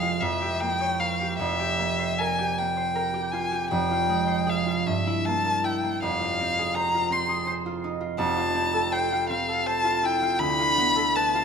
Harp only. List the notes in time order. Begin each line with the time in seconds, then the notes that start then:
Already playing: F1 F2 G#3 C4 G#4 C5
0.03 F4
0.22 F2
0.42 G4
0.61 A#3
0.81 C#5
1.00 A#4
1.21 G4
1.39 F1 F2
1.59 G4
1.79 A#3
1.99 C5
2.20 A#4
2.39 G4
2.58 A#3
2.77 C5
2.95 A#4
3.14 G4
3.33 F4
3.52 G4
3.71 F1 F2
3.91 F4
4.09 G#3
4.27 C5
4.47 G#4
4.66 F4
4.86 G2
5.07 E4
5.28 A#3
5.45 A#4
5.64 E4
5.83 A#3
6.02 F1 F2
6.21 F4
6.40 C4
6.59 G#4
6.76 C5
6.94 F4
7.11 C4
7.29 G#4
7.47 C5
7.66 F4
7.84 D#4
8.01 F4
8.18 F1 F2
8.37 F4
8.55 C4
8.74 A4
8.92 C5
9.12 F4
9.30 C4
9.49 A4
9.66 C5
9.85 F4
10.03 E4
10.22 F4
10.39 D2
10.59 F4
10.77 B3
10.96 A4
11.16 B4
11.35 F4